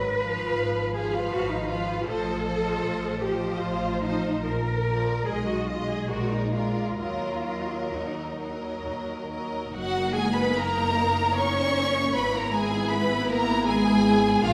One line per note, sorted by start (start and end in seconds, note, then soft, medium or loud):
0.00 0.50 G#1 medium
0.00 0.94 B4 medium
0.19 0.93 F3 soft
0.19 0.93 B4 soft
0.19 0.94 F5 soft
0.58 1.24 G#1 medium
0.94 1.69 F3 medium
0.94 1.14 G#4 medium
0.94 1.69 B4 soft
0.94 1.68 F5 medium
1.15 1.33 F4 medium
1.33 1.99 G#1 medium
1.33 1.52 F#4 medium
1.51 1.70 D#4 medium
1.69 2.06 F3 medium
1.69 2.08 F4 medium
1.69 2.08 B4 medium
1.69 2.07 F5 soft
2.07 2.75 A1 medium
2.07 2.44 F3 soft
2.07 3.23 A4 medium
2.07 2.45 C5 medium
2.07 2.45 D#5 soft
2.45 3.21 F3 medium
2.45 3.21 C5 medium
2.45 3.21 D#5 soft
2.84 3.52 A1 medium
3.22 4.02 F3 medium
3.22 3.61 G4 medium
3.22 4.02 C5 soft
3.22 4.01 D#5 soft
3.60 4.36 A1 medium
3.60 4.03 F4 medium
4.01 4.45 F3 soft
4.01 4.45 D#4 medium
4.01 4.45 C5 soft
4.01 4.45 D#5 soft
4.45 5.18 A#1 medium
4.45 5.25 A#4 medium
4.87 5.27 F3 soft
4.87 5.27 A#4 soft
4.87 5.27 D5 soft
5.26 6.01 B1 medium
5.26 5.67 G#3 soft
5.26 5.47 G#4 medium
5.26 5.66 D#5 soft
5.48 5.68 F#4 medium
5.67 6.10 G#3 soft
5.67 5.89 F4 medium
5.67 6.09 D#5 soft
5.89 6.10 G#4 medium
6.10 6.89 A#1 medium
6.10 6.54 G#3 soft
6.10 6.32 F#4 medium
6.10 6.53 A#4 soft
6.10 6.53 D5 soft
6.32 6.54 D#4 medium
6.53 7.00 G#3 soft
6.53 6.98 F4 medium
6.53 6.97 A#4 soft
6.53 6.99 D5 soft
6.99 7.84 D#2 medium
6.99 7.46 F#3 soft
6.99 7.93 F4 medium
6.99 7.45 A#4 soft
6.99 7.47 D#5 soft
7.47 8.38 F#3 soft
7.47 8.38 A#4 soft
7.47 8.39 D#5 soft
7.95 8.75 D#2 medium
7.95 8.86 D#4 medium
8.39 9.28 F#3 soft
8.39 9.28 A#4 soft
8.39 9.29 D#5 soft
8.87 9.64 D#2 medium
9.29 9.72 F#3 soft
9.29 9.72 A#4 soft
9.29 9.73 D#5 soft
9.71 12.11 F#1 medium
9.71 10.11 F#3 medium
9.71 12.10 A#3 medium
9.71 12.10 D#4 medium
9.71 10.11 F#4 medium
9.71 10.11 F#5 medium
10.13 10.34 G#3 medium
10.13 10.33 G#4 medium
10.13 10.34 G#5 medium
10.34 10.54 B3 medium
10.34 10.54 B4 medium
10.34 10.54 B5 medium
10.54 11.36 A#3 medium
10.54 11.37 A#4 medium
10.54 11.36 A#5 medium
11.34 12.15 C#4 medium
11.34 12.14 C#5 medium
11.34 12.15 C#6 medium
12.14 14.39 G#1 medium
12.14 12.34 B3 medium
12.14 14.39 B3 medium
12.14 14.39 E4 medium
12.14 12.34 B4 medium
12.14 12.35 B5 medium
12.33 12.53 A#3 medium
12.33 12.53 A#4 medium
12.33 12.54 A#5 medium
12.53 12.91 G#3 medium
12.53 12.90 G#4 medium
12.53 12.91 G#5 medium
12.90 13.29 B3 medium
12.90 13.29 B4 medium
12.90 13.29 B5 medium
13.28 13.67 A#3 medium
13.28 13.68 A#4 medium
13.28 13.68 A#5 medium
13.66 14.43 G#3 medium
13.66 14.42 G#4 medium
13.66 14.41 G#5 medium
14.43 14.53 A#1 medium
14.43 14.53 F3 medium
14.43 14.53 A#3 medium
14.43 14.53 D4 medium
14.43 14.53 F4 medium
14.43 14.53 F5 medium